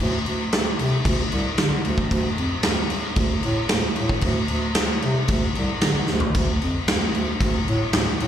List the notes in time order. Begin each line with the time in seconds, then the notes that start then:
0.00 D2, crash
0.25 D2, crash
0.52 D2, snare, crash
0.79 C3, crash
1.05 D2, kick, crash
1.31 C2, crash
1.58 D3, snare, crash
1.85 D2, crash
1.98 kick
2.11 D2, kick, crash
2.37 F2, crash
2.63 D2, snare, crash
2.90 crash
3.16 D2, kick, crash
3.43 A2, crash
3.69 D2, snare, crash
3.96 A2, crash
4.09 kick
4.21 D2, kick, crash
4.48 D2, crash
4.75 D2, snare, crash
5.02 C3, crash
5.28 D2, kick, crash
5.55 C2, crash
5.81 D3, snare, crash
6.07 D2, snare
6.20 floor tom
6.35 D2, kick, splash, crash
6.61 F2, crash
6.88 D2, snare, crash
7.14 D2, crash
7.41 D2, kick, crash
7.67 A2, crash
7.93 D2, snare, crash
8.19 A2, crash